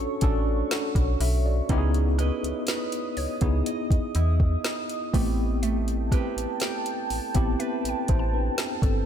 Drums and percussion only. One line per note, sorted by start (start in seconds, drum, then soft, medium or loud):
0.21 kick loud
0.21 closed hi-hat medium
0.71 snare loud
0.71 closed hi-hat medium
0.95 kick medium
0.95 closed hi-hat medium
1.21 open hi-hat medium
1.69 kick loud
1.69 closed hi-hat medium
1.94 closed hi-hat soft
2.19 cross-stick medium
2.19 closed hi-hat medium
2.44 closed hi-hat medium
2.67 snare loud
2.67 closed hi-hat medium
2.92 closed hi-hat medium
3.17 open hi-hat soft
3.41 kick medium
3.41 closed hi-hat medium
3.66 closed hi-hat medium
3.91 kick loud
3.91 closed hi-hat medium
4.15 closed hi-hat medium
4.40 kick medium
4.65 snare loud
4.65 closed hi-hat medium
4.89 closed hi-hat soft
5.14 kick loud
5.14 open hi-hat medium
5.63 closed hi-hat medium
5.88 closed hi-hat soft
6.12 kick medium
6.12 cross-stick medium
6.12 closed hi-hat medium
6.38 closed hi-hat medium
6.60 snare loud
6.60 closed hi-hat medium
6.86 closed hi-hat medium
7.10 open hi-hat soft
7.35 kick medium
7.35 closed hi-hat medium
7.60 closed hi-hat medium
7.85 closed hi-hat medium
8.08 kick loud
8.08 closed hi-hat medium
8.58 snare loud
8.58 closed hi-hat medium
8.82 kick loud
8.82 closed hi-hat soft